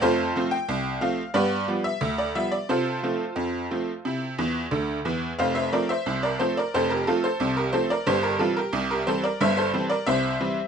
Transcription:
<<
  \new Staff \with { instrumentName = "Honky-tonk piano" } { \time 2/4 \key f \major \tempo 4 = 90 <f' a' c''>8. g''8. f''8 | <g' b' d''>8. e''8 d''16 e''16 d''16 | <f' a' c''>2~ | <f' a' c''>4 r4 |
<c'' f''>16 <c'' e''>16 <bes' d''>16 <c'' e''>8 <bes' d''>16 <a' c''>16 <bes' d''>16 | <a' c''>16 <g' bes'>16 <f' a'>16 <a' c''>8 <g' bes'>16 <a' c''>16 <bes' d''>16 | <g' c''>16 <g' bes'>16 <f' a'>16 <g' bes'>8 <g' bes'>16 <a' c''>16 <bes' d''>16 | <c'' e''>16 <a' c''>8 <bes' d''>16 <c'' e''>4 | }
  \new Staff \with { instrumentName = "Honky-tonk piano" } { \clef bass \time 2/4 \key f \major <f, a>8 <f a c'>8 c,8 <f a c'>8 | <g, b>8 <f g b>8 d,8 <f g b>8 | c8 <f a c'>8 f,8 <f a c'>8 | <c e'>8 <e, e>8 <d, d>8 <e, e>8 |
<f,, f,>8 <f a c'>8 <c, c>8 <f a c'>8 | <f,, f,>8 <f a c'>8 <c, c>8 <f a c'>8 | <g,, g,>8 <e g c'>8 <c, c>8 <e g c'>8 | <g,, g,>8 <e g c'>8 <c, c>8 <e g c'>8 | }
>>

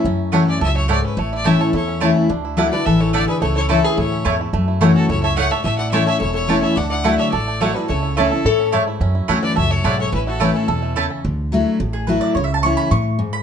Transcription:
<<
  \new Staff \with { instrumentName = "Fiddle" } { \time 4/4 \key a \major \tempo 4 = 215 r4. d''8 e''8 cis''8 d''8 b'8 | cis''8 d''8 e''8 cis''8 cis''4. r8 | r4. d''8 e''8 cis''8 d''8 b'8 | cis''8 cis''8 a'8 b'8 cis''4. r8 |
r4. a'8 cis''8 e''8 fis''8 e''8 | e''8 fis''8 e''8 e''8 cis''8 cis''4 e''8 | fis''8 fis''4 e''8 d''4 cis''8 b'8 | cis''4 a'4 cis''4 r4 |
r4. d''8 e''8 cis''8 d''8 cis''8 | b'8 a'8 b'8 a'4. r4 | r1 | r1 | }
  \new Staff \with { instrumentName = "Mandolin" } { \time 4/4 \key a \major r4 <a e' cis'' fis''>8 r4. <a e' cis'' fis''>8 r8 | r4 <a e' cis'' a''>8 r4. <a e' cis'' a''>8 r8 | r4 <a e' d'' fis''>8 r4. <a e' d'' fis''>8 r8 | r4 <a e' cis'' a''>8 r4. <a e' cis'' a''>8 r8 |
r4 <a e' cis'' fis''>8 r4. <a e' cis'' fis''>8 r8 | r4 <a e' cis'' a''>8 r4. <a e' cis'' a''>8 r8 | r4 <a e' d'' fis''>8 r4. <a e' d'' fis''>8 r8 | r4 <a e' cis'' a''>8 r4. <a e' cis'' a''>8 r8 |
r4 <a e' cis'' fis''>8 r4. <a e' cis'' fis''>8 r8 | r4 <a e' cis'' a''>8 r4. <a e' cis'' a''>8 r8 | r2 r8 gis'8 b'8 d''8 | \tuplet 3/2 { cis''8 e''8 a''8 } cis'''8 b''8 cis'''4. b''8 | }
  \new Staff \with { instrumentName = "Resonator guitar played with a steel bar" } { \time 4/4 \key a \major r1 | r2 a'4. r8 | r4. b'8 a'8 a'8 a'8 gis'8 | a'8 a'8 e'8 gis'8 a'4. r8 |
r4. fis'8 a'8 cis''8 cis''8 cis''8 | cis''8 d''8 cis''8 cis''8 a'8 a'4 cis''8 | d''8 d''4 cis''8 a'4 a'8 gis'8 | a'4 e'4 a'4 r4 |
r4. b'8 cis''8 a'8 a'8 a'8 | e'8 fis'8 e'8 e'4. r4 | r1 | r1 | }
  \new Staff \with { instrumentName = "Five-string banjo" } { \time 4/4 \key a \major cis'4 a'8 cis'8 a'8 a8 a'8 cis'8 | a8 e'8 a8 a'8 e'8 cis'8 a8 e'8 | d'8 e'8 a'8 d'8 a'8 a8 a'8 d'8 | a8 e'8 a8 a'8 e'8 cis'8 a8 e'8 |
a8 e'8 a'8 cis'8 e'8 a'8 e'8 a'8 | a8 e'8 a8 a'8 e'8 cis'8 a8 e'8 | d'8 e'8 a'8 d'8 a'8 a8 a'8 d'8 | a8 e'8 a8 a'8 e'8 cis'8 a8 e'8 |
cis'8 e'8 a'8 cis'8 a'8 a8 a'8 cis'8 | cis'8 e'8 a'8 cis'8 a'8 a8 a'8 cis'8 | r1 | r1 | }
  \new Staff \with { instrumentName = "Steel-string acoustic guitar" } { \time 4/4 \key a \major << { r4 <e a cis' fis'>4 r2 | r4 <e a cis' e'>4 r4 <e a cis' e'>4 | r4 <fis a e' fis'>8 <e' fis'>8 r2 | r4 <e a cis' e'>4 r2 |
r4 <e a cis' fis'>4 r2 | r4 <e a cis' e'>4 r4 <e a cis' e'>4 | r4 <fis a e' fis'>4 r4 <fis a e' fis'>8 <e' fis'>8 | r4 <e a cis' e'>8 <cis' e'>8 r2 |
r4 <e a cis' fis'>4 r2 | r4 <e a cis' e'>4 r2 | r4 <fis a e' fis'>4 r4 <fis a e' fis'>4 | r4 <e a cis' e'>4 r2 | } \\ { fis,2 fis,4 gis,4 | a,2 e,2 | d2 e4 d4 | cis2 a,4 gis,4 |
fis,2 fis,4 gis,4 | a,2 e,2 | d2 a,2 | cis2 a,4 gis,4 |
fis,2 fis,4 gis,4 | a,2 b,4 cis4 | d2 a,2 | cis2 a,4 gis,4 | } >> }
  \new Staff \with { instrumentName = "Upright bass" } { \clef bass \time 4/4 \key a \major fis,2 cis,2 | a,,2 e,2 | d,2 a,,2 | cis,2 d,4 e,4 |
fis,2 cis,2 | a,,2 e,,2 | d,2 a,,2 | cis,2 a,2 |
fis,4 d,4 cis,4 b,,4 | a,,2 e,2 | d,2 a,,2 | cis,2 a,2 | }
>>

